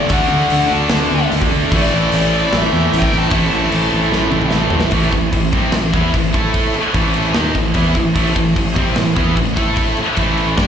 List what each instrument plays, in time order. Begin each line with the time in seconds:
Already playing: lead electric guitar D5, tonewheel organ D5
0.09 fingered electric bass D2, distorted electric guitar D3 F#3 A3 D4, tonewheel organ F#4 A5, kick, open hi-hat
0.13 lead electric guitar F#5
0.28 fingered electric bass D2, distorted electric guitar D3 F#3 A3 D4
0.50 fingered electric bass D2, distorted electric guitar D3 F#3 A3 D4, lead electric guitar F#5, open hi-hat
0.70 fingered electric bass D2, distorted electric guitar D3 F#3 A3 D4
0.74 lead electric guitar A5
0.89 fingered electric bass D2, distorted electric guitar D3 F#3 A3 D4, snare, open hi-hat
1.11 fingered electric bass D2, distorted electric guitar D3 F#3 A3 D4
1.32 fingered electric bass D2, distorted electric guitar D3 F#3 A3 D4, open hi-hat
1.42 kick
1.52 fingered electric bass D2, distorted electric guitar D3 F#3 A3 D4
1.72 fingered electric bass A1, distorted electric guitar A2 E3 A3 C4 E4, tonewheel organ E4 C5, kick, crash
1.76 lead electric guitar D5
1.93 fingered electric bass A1, distorted electric guitar A2 E3 A3 C4 E4
2.12 fingered electric bass A1, distorted electric guitar A2 E3 A3 C4 E4, lead electric guitar D5, open hi-hat
2.33 distorted electric guitar A2 E3 A3 C4 E4
2.52 fingered electric bass A1, distorted electric guitar A2 E3 A3 C4 E4, snare, open hi-hat
2.58 lead electric guitar E5
2.72 fingered electric bass E2, distorted electric guitar A2 E3 A3 C4 E4
2.88 lead electric guitar E5
2.92 fingered electric bass A1, distorted electric guitar A2 E3 A3 C4 E4, open hi-hat
2.99 lead electric guitar G5, kick
3.12 fingered electric bass A1, distorted electric guitar A2 E3 A3 C4 E4, snare
3.18 lead electric guitar A5
3.29 fingered electric bass A1, distorted electric guitar A2 E3 A3 C4 E4, kick, open hi-hat
3.50 fingered electric bass A1, distorted electric guitar A2 E3 A3 C4 E4
3.70 fingered electric bass A1, distorted electric guitar A2 E3 A3 C4 E4, open hi-hat
3.90 fingered electric bass A1, distorted electric guitar A2 E3 A3 C4 E4
4.09 fingered electric bass A1, distorted electric guitar A2 E3 A3 C4 E4, snare
4.30 fingered electric bass A1, distorted electric guitar A2 E3 A3 C4 E4, mid tom
4.42 mid tom
4.51 fingered electric bass A1, distorted electric guitar A2 E3 A3 C4 E4, snare
4.70 fingered electric bass A1, distorted electric guitar A2 E3 A3 C4 E4, floor tom
4.81 snare
4.90 fingered electric bass A1, distorted electric guitar A2 E3 A3, tonewheel organ E4 C5 A5, kick, crash
5.11 fingered electric bass A1, distorted electric guitar A2 E3, kick, crash
5.33 fingered electric bass A1, distorted electric guitar A2 E3, kick, crash
5.52 fingered electric bass C2, distorted electric guitar C3 G3 C4, kick, crash
5.72 fingered electric bass A1, distorted electric guitar A2 E3, snare, crash
5.91 fingered electric bass E2, distorted electric guitar E3 B3 E4, kick, crash
6.12 fingered electric bass A1, distorted electric guitar A2 E3, kick, crash
6.32 fingered electric bass A2, distorted electric guitar A3 E4 A4, kick, crash
6.54 kick, crash
6.74 muted distorted electric guitar stroke, muted fingered electric bass stroke, crash
6.93 fingered electric bass A1, distorted electric guitar A2 E3 A3, kick, crash
7.14 crash
7.34 fingered electric bass D#2, distorted electric guitar D#3 A#3 D#4, snare, crash
7.55 fingered electric bass A1, distorted electric guitar A2 E3, kick, crash
7.74 fingered electric bass E2, distorted electric guitar E3 B3 E4, kick, crash
7.95 fingered electric bass A1, distorted electric guitar A2 E3, kick, crash
8.16 fingered electric bass A1, distorted electric guitar A2 E3 A3, kick, crash
8.36 fingered electric bass A1, distorted electric guitar A2 E3, kick, crash
8.56 fingered electric bass A1, distorted electric guitar A2 E3, kick, crash
8.75 fingered electric bass C2, distorted electric guitar C3 G3 C4, kick, crash
8.96 fingered electric bass A1, distorted electric guitar A2 E3, snare, crash
9.16 fingered electric bass E2, distorted electric guitar E3 B3 E4, kick, crash
9.37 fingered electric bass A1, distorted electric guitar A2 E3, kick, crash
9.56 fingered electric bass A2, distorted electric guitar A3 E4 A4, kick, crash
9.76 kick, crash
9.97 muted fingered electric bass stroke, muted distorted electric guitar stroke, crash
10.16 fingered electric bass A1, distorted electric guitar A2 E3 A3, kick, crash
10.37 crash
10.57 fingered electric bass G2, distorted electric guitar G3 D4 G4, tonewheel organ G5, kick, snare, crash
10.62 tonewheel organ D4 G4